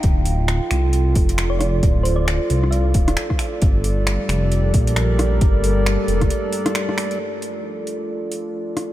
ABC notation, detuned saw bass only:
X:1
M:4/4
L:1/8
Q:"Swing 16ths" 1/4=134
K:Dm
V:1 name="Detuned saw bass" clef=bass
D,,,2 z C,,2 F,,,3 | D,,,2 z C,,2 D,,, z2 | G,,,2 z F,,,2 B,,,3 | G,,,2 z F,,, z4 |
z8 |]